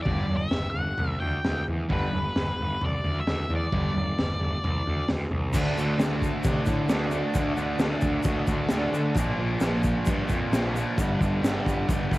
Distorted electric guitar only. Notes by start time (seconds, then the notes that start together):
0.06 G2 D3 G3
1.89 G2 D3 G3
3.72 G2 D3 G3
5.53 D3 A3 D4
5.77 A3 D4
6.00 D3 A3 D4
6.45 D3 A3 D4
6.68 A3 D4
6.90 D3 A3 D4
7.12 A3 D4
7.34 D3 A3 D4
7.58 A3 D4
7.81 D3 A3 D4
8.25 D3 A3
8.29 D4
8.49 A3 D4
8.72 D3 A3 D4
8.95 A3 D4
9.16 A#2 F3 A#3
9.39 F3 A#3
9.62 A#2 F3
9.66 A#3
10.07 A#2 F3 A#3
10.29 A#3
10.33 F3
10.52 A#2 F3 A#3
10.74 F3 A#3
10.97 G2 D3 G3
11.20 D3 G3
11.42 G2 D3
11.46 G3
11.88 G2 D3 G3
12.11 D3 G3